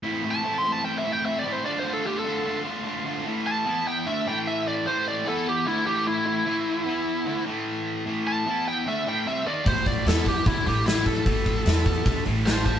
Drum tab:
HH |--------|--------|--------|--------|
SD |--------|--------|--------|--------|
BD |--------|--------|--------|--------|

HH |--------|--------|oooooooo|oooooooo|
SD |--------|--------|--o---o-|--o---o-|
BD |--------|--------|oo-oo--o|oo-oo--o|